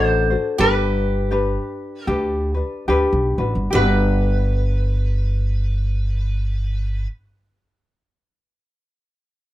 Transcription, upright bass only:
0.00 0.35 A1 loud
0.59 1.56 G1 medium
2.07 2.60 D2 loud
2.88 3.04 D2 medium
3.13 3.35 B1 medium
3.38 3.53 A1 medium
3.55 3.71 G1 medium
3.73 7.05 G1 loud

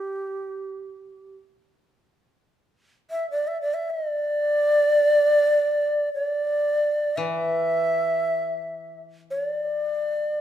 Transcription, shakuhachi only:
0.00 1.36 G4 medium
3.11 3.30 E5 medium
3.31 3.49 D5 medium
3.48 3.61 E5 medium
3.61 3.75 D5 medium
3.74 3.92 E5 medium
3.90 4.08 D#5 medium
4.08 6.14 D5 medium
6.14 7.18 D5 medium
7.16 8.99 E5 loud
9.31 9.47 C#5 medium
9.47 10.41 D5 medium

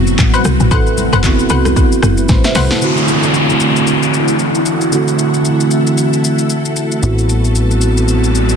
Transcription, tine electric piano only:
0.00 1.24 B3 medium
0.00 0.72 C4 medium
0.00 0.72 E4 medium
0.00 1.26 F#4 loud
0.00 0.71 B4 medium
0.71 1.15 C4 medium
0.71 1.16 E4 medium
0.71 1.16 A4 medium
0.71 1.15 B4 medium
1.24 2.09 B3 medium
1.24 2.09 C4 medium
1.24 2.10 E4 medium
1.24 2.10 F#4 medium
2.19 2.29 B4 medium
2.30 2.44 C5 medium
2.45 2.55 E5 medium
2.56 2.70 F#5 medium
2.71 2.96 A5 medium
2.81 4.88 D3 medium
2.81 4.88 A3 medium
2.81 4.89 C4 medium
2.81 4.89 E4 medium
2.81 4.90 F#4 medium
4.92 6.99 D3 medium
4.92 6.99 A3 medium
4.92 6.99 C4 medium
4.92 7.00 E4 medium
4.92 7.00 F#4 medium
7.02 8.56 B3 medium
7.02 8.56 C4 medium
7.02 8.56 E4 medium
7.02 8.56 F#4 medium

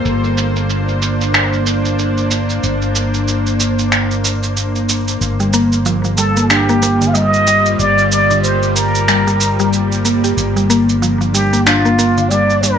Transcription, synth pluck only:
5.40 5.52 G3 medium
5.54 5.71 A#3 loud
5.86 6.03 F3 loud
6.05 6.17 F3 medium
6.18 6.35 G3 medium
6.37 6.49 A#3 medium
6.50 6.67 D4 medium
6.69 6.81 A#3 loud
6.83 7.01 A#3 loud
7.01 7.14 D3 medium
7.15 7.46 G3 medium
7.47 8.10 G3 medium
8.31 8.43 D3 medium
9.08 9.26 G3 medium
9.27 9.58 G3 medium
9.60 10.04 G3 loud
10.05 10.23 A#3 medium
10.24 10.38 G4 medium
10.56 10.68 G3 medium
10.70 10.88 A#3 loud
11.02 11.20 F3 medium
11.21 11.34 F3 medium
11.34 11.51 G3 medium
11.53 11.65 A#3 medium
11.67 11.83 D4 medium
11.85 11.97 A#3 medium
11.99 12.17 A#3 medium
12.18 12.30 D3 medium
12.31 12.62 G3 medium
12.63 12.78 G3 medium

